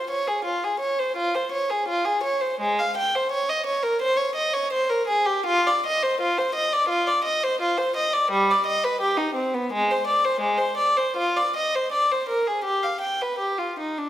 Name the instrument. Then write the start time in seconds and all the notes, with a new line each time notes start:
violin
0.10 C#5
0.27 G#4
0.45 F4
0.64 G#4
0.80 C#5
0.99 C5
1.16 F4
1.35 C5
1.52 C#5
1.70 G#4
1.88 F4
2.05 G#4
2.23 C#5
2.41 C5
2.60 G#3
2.79 F5
2.97 G5
3.15 C5
3.31 C#5
3.49 D#5
3.66 C#5
3.83 A#4
4.02 C5
4.17 C#5
4.35 D#5
4.53 C#5
4.73 C5
4.90 A#4
5.07 G#4
5.26 G4
5.46 F4
5.67 D5
5.86 D#5
6.03 C5
6.21 F4
6.38 C5
6.55 D#5
6.73 D5
6.89 F4
7.07 D5
7.24 D#5
7.43 C5
7.61 F4
7.77 C5
7.96 D#5
8.13 D5
8.31 G3
8.50 D5
8.66 D#5
8.84 B4
9.01 G4
9.17 D#4
9.35 C4
9.54 B3
9.73 G#3
9.90 C5
10.07 D5
10.24 C5
10.40 G#3
10.58 C5
10.77 D5
10.97 C5
11.16 F4
11.36 D5
11.56 D#5
11.75 C5
11.92 D5
12.11 C5
12.29 A#4
12.47 G#4
12.64 G4
12.83 F5
13.01 G5
13.21 B4
13.39 G4
13.58 F4
13.79 D#4
13.98 D4